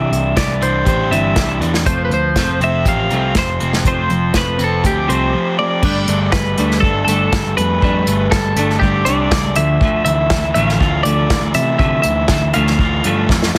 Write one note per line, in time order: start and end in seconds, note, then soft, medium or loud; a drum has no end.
0.00 0.11 C2 medium
0.00 0.10 C3 medium
0.00 0.11 E3 medium
0.00 0.35 E3 medium
0.00 0.11 G3 medium
0.00 0.60 D4 medium
0.00 0.85 G4 medium
0.00 0.37 E5 loud
0.12 0.36 C2 medium
0.12 0.34 C3 medium
0.12 0.34 E3 medium
0.12 closed hi-hat medium
0.36 0.61 C2 medium
0.36 0.60 C3 medium
0.36 0.60 E3 medium
0.36 0.61 G3 medium
0.36 0.63 D5 medium
0.36 kick loud
0.36 snare loud
0.36 closed hi-hat medium
0.61 0.86 C2 medium
0.61 0.85 C3 medium
0.61 0.85 E3 medium
0.61 1.10 D4 medium
0.61 0.87 C5 medium
0.61 closed hi-hat medium
0.85 1.10 A1 medium
0.85 1.10 C3 medium
0.85 1.10 E3 medium
0.85 1.90 G4 medium
0.85 1.13 C5 medium
0.85 kick loud
0.85 closed hi-hat medium
1.11 1.36 G1 medium
1.11 1.35 C3 medium
1.11 1.35 E3 medium
1.11 1.36 G3 medium
1.11 1.60 D4 medium
1.11 1.58 E5 medium
1.11 closed hi-hat medium
1.36 1.59 C2 medium
1.36 1.60 C3 medium
1.36 1.60 E3 medium
1.36 kick loud
1.36 snare loud
1.36 closed hi-hat medium
1.60 1.85 E2 medium
1.60 1.85 C3 medium
1.60 1.85 E3 medium
1.60 1.86 D4 medium
1.60 closed hi-hat medium
1.74 snare medium
1.85 2.09 F1 medium
1.85 2.10 F3 medium
1.85 2.10 A3 medium
1.85 2.11 C4 medium
1.85 2.04 C5 medium
1.85 kick loud
1.85 closed hi-hat medium
2.05 2.12 B4 medium
2.10 2.35 D2 medium
2.10 2.34 F3 medium
2.10 2.34 A3 medium
2.10 2.59 C5 medium
2.10 closed hi-hat medium
2.36 2.60 F1 medium
2.36 2.60 F3 medium
2.36 2.60 A3 medium
2.36 2.61 C4 medium
2.36 kick medium
2.36 snare loud
2.36 closed hi-hat medium
2.60 2.85 F1 medium
2.60 2.85 F3 medium
2.60 2.85 A3 medium
2.60 3.10 C4 medium
2.60 2.88 E5 medium
2.60 closed hi-hat medium
2.85 3.10 A1 loud
2.85 3.09 F3 medium
2.85 3.09 A3 medium
2.85 4.11 G4 medium
2.85 3.38 F5 loud
2.85 kick loud
2.85 closed hi-hat medium
3.10 3.35 C2 medium
3.10 3.35 F3 medium
3.10 3.36 A3 medium
3.10 3.36 C4 medium
3.10 closed hi-hat medium
3.35 3.60 F1 medium
3.35 3.59 F3 medium
3.35 3.59 A3 medium
3.35 3.72 C5 medium
3.35 kick loud
3.35 snare loud
3.35 closed hi-hat medium
3.60 3.84 F1 medium
3.60 3.83 F3 medium
3.60 3.83 A3 medium
3.60 4.58 C4 medium
3.60 closed hi-hat medium
3.73 snare medium
3.85 4.09 F1 medium
3.85 4.09 F3 medium
3.85 4.09 A3 medium
3.85 4.10 C4 medium
3.85 4.33 C5 medium
3.85 kick loud
3.85 closed hi-hat medium
4.10 4.33 F1 medium
4.10 4.33 F3 medium
4.10 4.33 A3 medium
4.10 closed hi-hat medium
4.34 4.57 F3 medium
4.34 4.58 A3 medium
4.34 4.59 C4 medium
4.34 4.62 B4 medium
4.34 kick medium
4.34 snare medium
4.34 closed hi-hat medium
4.58 4.83 F1 medium
4.58 4.82 F3 medium
4.58 4.82 A3 medium
4.58 5.08 C4 medium
4.58 closed hi-hat medium
4.64 4.86 A4 medium
4.83 5.08 D2 loud
4.83 5.06 F3 medium
4.83 5.07 A3 medium
4.83 5.85 G4 medium
4.83 5.57 G4 medium
4.83 kick loud
4.83 closed hi-hat medium
5.08 5.33 C2 medium
5.08 5.32 F3 medium
5.08 5.32 A3 medium
5.08 5.33 C4 medium
5.08 5.56 C5 medium
5.08 closed hi-hat medium
5.33 5.57 F3 medium
5.33 5.57 A3 medium
5.58 5.81 F3 medium
5.58 5.82 A3 medium
5.58 5.84 C4 medium
5.58 6.32 D5 medium
5.82 6.04 G1 medium
5.82 6.07 G3 medium
5.82 6.07 A3 medium
5.82 6.08 D4 loud
5.82 kick loud
5.82 crash loud
6.08 6.29 G1 medium
6.08 6.31 G3 medium
6.08 6.32 A3 medium
6.08 closed hi-hat medium
6.32 6.56 G3 medium
6.32 6.56 A3 medium
6.32 6.80 B4 medium
6.32 kick loud
6.32 snare loud
6.58 6.79 D2 medium
6.58 6.82 G3 medium
6.58 6.83 A3 medium
6.58 6.83 D4 medium
6.58 closed hi-hat medium
6.71 snare soft
6.80 7.03 G1 loud
6.80 7.06 G3 medium
6.80 7.06 A3 medium
6.80 8.81 D4 medium
6.80 7.03 A4 medium
6.80 kick loud
7.05 7.28 G1 medium
7.05 7.31 G3 medium
7.05 7.57 A4 medium
7.05 closed hi-hat medium
7.09 7.32 A3 medium
7.09 7.32 D4 loud
7.32 7.56 G3 medium
7.32 7.56 A3 medium
7.32 kick loud
7.32 snare loud
7.57 7.78 F2 medium
7.57 7.81 G3 medium
7.57 7.81 A3 medium
7.57 8.35 B4 medium
7.57 closed hi-hat medium
7.82 8.03 F2 medium
7.82 8.07 G3 medium
7.82 8.07 A3 medium
7.82 8.07 D4 medium
7.82 kick loud
8.07 8.28 G1 medium
8.07 8.31 G3 medium
8.07 8.31 A3 medium
8.07 closed hi-hat loud
8.31 8.53 G1 medium
8.31 8.56 G3 medium
8.31 8.56 A3 medium
8.31 8.79 A4 medium
8.31 kick loud
8.31 snare loud
8.56 8.77 G1 medium
8.56 8.81 G3 medium
8.56 8.81 A3 medium
8.56 8.82 D4 medium
8.56 closed hi-hat loud
8.70 snare soft
8.79 9.02 G1 loud
8.79 9.05 G3 medium
8.79 9.05 A3 medium
8.79 10.10 D4 medium
8.79 9.07 G4 medium
8.79 kick loud
9.05 9.27 C2 medium
9.05 9.31 G3 medium
9.05 9.31 A3 medium
9.05 9.32 D4 medium
9.05 9.56 D5 loud
9.05 closed hi-hat loud
9.31 9.55 G3 medium
9.31 9.55 A3 medium
9.31 kick loud
9.31 snare loud
9.55 9.77 D2 medium
9.55 9.80 D3 loud
9.55 9.80 F3 medium
9.55 9.81 A3 loud
9.55 10.03 E5 loud
9.55 closed hi-hat medium
9.81 10.02 D2 medium
9.81 10.05 D3 medium
9.81 10.06 F3 medium
9.81 10.06 A3 medium
9.81 kick loud
10.05 10.26 D2 medium
10.05 10.29 D3 medium
10.05 10.30 E3 medium
10.05 10.30 F3 medium
10.05 10.52 E5 loud
10.05 closed hi-hat medium
10.30 10.54 D3 medium
10.30 11.29 E3 medium
10.30 10.54 F3 medium
10.30 kick loud
10.30 snare loud
10.54 10.76 A1 loud
10.54 10.80 D3 medium
10.54 10.80 F3 medium
10.54 10.81 A3 medium
10.54 11.02 F5 loud
10.54 closed hi-hat medium
10.69 snare soft
10.80 11.01 D2 loud
10.80 11.04 D3 medium
10.80 11.05 F3 medium
10.80 12.05 F4 medium
10.80 kick loud
11.03 11.26 D2 medium
11.03 11.29 D3 medium
11.03 11.30 F3 medium
11.03 11.30 A3 loud
11.03 11.51 D5 loud
11.03 closed hi-hat medium
11.30 11.51 D2 medium
11.30 11.53 D3 medium
11.30 12.04 E3 medium
11.30 11.54 F3 medium
11.30 kick loud
11.30 snare loud
11.54 11.75 C3 medium
11.54 11.78 D3 medium
11.54 11.78 F3 medium
11.54 12.54 A3 medium
11.54 11.77 E5 loud
11.54 closed hi-hat medium
11.79 12.00 C3 medium
11.79 12.03 D3 medium
11.79 12.04 F3 medium
11.79 12.04 A3 loud
11.79 12.01 E5 loud
11.79 kick loud
12.02 12.25 D2 medium
12.02 12.27 D3 medium
12.02 12.29 E3 medium
12.02 12.28 F3 medium
12.02 12.53 E5 loud
12.02 closed hi-hat medium
12.28 12.50 D2 medium
12.28 12.52 D3 medium
12.28 13.29 E3 medium
12.28 12.53 F3 medium
12.28 kick loud
12.28 snare loud
12.54 12.76 D2 medium
12.54 12.78 D3 medium
12.54 12.78 F3 medium
12.54 12.79 A3 loud
12.54 13.25 F5 loud
12.54 closed hi-hat medium
12.67 snare soft
12.79 13.00 D2 loud
12.79 13.02 D3 medium
12.79 13.03 F3 medium
12.79 13.58 F4 medium
12.79 kick loud
13.04 13.25 G2 medium
13.04 13.28 D3 medium
13.04 13.29 F3 loud
13.04 13.29 A3 loud
13.04 closed hi-hat loud
13.29 13.50 F2 medium
13.29 13.52 D3 medium
13.29 13.58 E3 medium
13.29 13.53 F3 medium
13.29 kick loud
13.29 snare medium
13.42 snare medium
13.55 13.58 A1 medium
13.55 snare medium